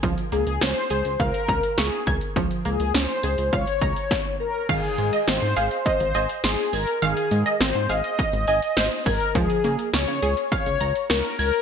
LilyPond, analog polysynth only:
\new Staff \with { instrumentName = "Analog polysynth" } { \time 4/4 \key aes \major \tempo 4 = 103 r8 aes'8 c''4 bes'4 aes'8. r16 | r8 aes'8 c''4 des''4. bes'8 | aes'4 c''4 c''4 aes'8 bes'8 | aes'4 c''8 ees''2 bes'8 |
aes'4 des''4 des''4 bes'8 bes'8 | }